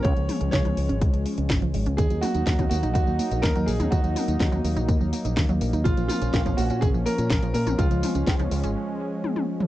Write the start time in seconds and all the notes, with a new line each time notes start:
Already playing: F3 C#4
0.03 C#2 C#3 G#3 C#5, kick, closed hi-hat
0.17 C#2 F3, closed hi-hat
0.29 G#3, open hi-hat, high tom
0.41 C#2 C#4, closed hi-hat
0.51 C#2 C#3 C#5, kick, snare, closed hi-hat
0.65 C#2 F3, closed hi-hat, high tom
0.77 C#2 G#3, open hi-hat
0.89 G#1 C#4, closed hi-hat
1.01 C#2 C#3, kick, closed hi-hat
1.14 C#2 F3, closed hi-hat
1.26 G#3, open hi-hat
1.38 C#2 C#4, closed hi-hat
1.50 G#1 C#3, kick, snare, closed hi-hat
1.62 C#2 F3, closed hi-hat
1.74 G#1 G#3, open hi-hat
1.86 C#2 C#4, closed hi-hat
1.97 D#2 D#3 F#3 A#3 D#4 G#4, kick, closed hi-hat, tambourine
2.10 D#2 F#3, closed hi-hat, tambourine
2.21 A#3 F#4, open hi-hat, high tom, tambourine
2.35 D#2 D#4, closed hi-hat, tambourine
2.47 D#2 D#3, kick, snare, closed hi-hat, tambourine
2.59 D#2 F#3, kick, closed hi-hat, high tom, tambourine
2.69 D#2 A#3 F#4, open hi-hat, tambourine
2.83 A#1 D#4, closed hi-hat, tambourine
2.94 D#2 D#3 F#4, kick, closed hi-hat, tambourine
3.07 D#2 F#3, tambourine
3.19 A#3, open hi-hat, tambourine
3.31 A#1 D#4, closed hi-hat, tambourine
3.42 D#2 D#3 A#4, kick, snare, closed hi-hat, tambourine
3.56 D#2 F#3, closed hi-hat, tambourine
3.66 A#1 A#3 G#4, open hi-hat, tambourine
3.80 D#2 D#4, closed hi-hat, high tom, tambourine
3.91 D#2 D#3 F#4, kick, closed hi-hat, tambourine
4.04 D#2 F#3, closed hi-hat, tambourine
4.16 A#3, open hi-hat, high tom, tambourine
4.28 D#2 D#4, closed hi-hat, tambourine
4.40 D#2 D#3, kick, snare, closed hi-hat, tambourine
4.52 D#2 F#3, closed hi-hat, high tom, tambourine
4.64 D#2 A#3, open hi-hat, tambourine
4.76 A#1 D#4, closed hi-hat, tambourine
4.88 D#2 D#3, kick, closed hi-hat, tambourine
5.01 D#2 F#3, tambourine
5.13 A#3, open hi-hat, tambourine
5.25 A#1 D#4, closed hi-hat, tambourine
5.37 D#2 D#3, kick, snare, closed hi-hat, tambourine
5.49 D#2 F#3, closed hi-hat, tambourine
5.61 A#1 A#3, open hi-hat, tambourine
5.73 D#2 D#4, closed hi-hat, tambourine
5.84 A#1 C#3 F3 C#4 F4, kick, closed hi-hat, tambourine
5.97 A#1 F3, closed hi-hat, tambourine
6.08 A#3 F4, open hi-hat, high tom, tambourine
6.22 A#1 C#4, closed hi-hat, tambourine
6.34 A#1 C#3, kick, snare, closed hi-hat, tambourine
6.46 A#1 F3, kick, closed hi-hat, high tom, tambourine
6.57 A#1 A#3 F#4, open hi-hat, tambourine
6.70 A#2 C#4, closed hi-hat, tambourine
6.81 A#1 C#3 G#4, kick, closed hi-hat, tambourine
6.94 A#1 F3, tambourine
7.06 A#3 A#4, open hi-hat, tambourine
7.18 A#2 C#4, closed hi-hat, tambourine
7.30 A#1 C#3, kick, snare, closed hi-hat, tambourine
7.42 A#1 F3, closed hi-hat, tambourine
7.54 A#2 A#3 A#4, open hi-hat, tambourine
7.67 A#1 C#4, closed hi-hat, high tom, tambourine
7.78 C#2 C#3 G#3 C#4 F4, kick, closed hi-hat, tambourine
7.91 C#2 F3, closed hi-hat, tambourine
8.03 G#3, open hi-hat, high tom, tambourine
8.15 C#2 C#4, closed hi-hat, tambourine
8.27 C#2 C#3, kick, snare, closed hi-hat, tambourine
8.39 C#2 F3, closed hi-hat, high tom, tambourine
8.51 C#2 G#3, open hi-hat, tambourine
8.63 G#1 C#4, closed hi-hat, tambourine
9.24 high tom
9.36 high tom
9.60 mid tom